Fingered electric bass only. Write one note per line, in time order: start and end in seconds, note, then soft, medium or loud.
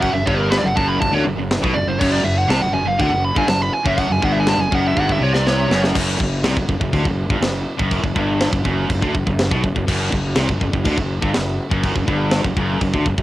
0.00 0.13 F#1 medium
0.13 0.25 F#1 medium
0.27 0.61 G1 loud
0.64 0.75 F#1 medium
0.77 1.00 F#1 medium
1.02 1.11 F#1 medium
1.12 1.24 D2 medium
1.25 1.37 F#1 medium
1.38 1.61 F#1 medium
1.63 1.74 B1 medium
1.75 1.86 F#1 medium
1.87 1.99 F#1 medium
2.01 2.23 F#1 medium
2.23 2.47 F#1 medium
2.49 2.60 C2 loud
2.62 2.72 F#1 medium
2.73 2.85 F#1 medium
2.86 2.98 F#1 medium
3.00 3.09 D2 loud
3.09 3.33 F#1 medium
3.36 3.47 G1 loud
3.47 3.70 F#1 medium
3.85 4.08 F#1 loud
4.10 4.21 F#1 medium
4.23 4.57 G1 loud
4.58 4.70 F#1 medium
4.72 4.94 F#1 loud
4.97 5.19 G1 loud
5.19 5.66 C2 loud
5.69 5.92 F#1 loud
5.96 6.18 F#1 medium
6.20 6.42 F#1 medium
6.44 6.55 C2 medium
6.56 6.68 F#1 medium
6.69 6.80 F#1 medium
6.80 6.92 F#1 medium
6.93 7.04 D2 loud
7.05 7.28 F#1 medium
7.30 7.40 G1 loud
7.40 7.64 F#1 medium
7.79 8.02 F#1 loud
8.04 8.15 F#1 medium
8.16 8.50 G1 loud
8.52 8.64 F#1 medium
8.65 8.88 F#1 loud
8.89 9.01 F#1 medium
9.02 9.13 D2 loud
9.15 9.26 F#1 medium
9.27 9.49 F#1 medium
9.51 9.62 B1 loud
9.64 9.75 F#1 medium
9.76 9.87 F#1 medium
9.88 10.10 F#1 loud
10.13 10.35 F#1 medium
10.35 10.47 C2 loud
10.49 10.60 F#1 medium
10.61 10.72 F#1 medium
10.73 10.85 F#1 medium
10.85 10.97 D2 loud
10.98 11.21 F#1 medium
11.23 11.34 G1 loud
11.36 11.58 F#1 medium
11.71 11.94 F#1 loud
11.96 12.07 F#1 medium
12.08 12.42 G1 loud
12.45 12.56 F#1 medium
12.56 12.79 F#1 loud
12.81 12.92 F#1 medium
12.93 13.05 D2 medium
13.06 13.17 F#1 medium
13.17 13.22 F#1 medium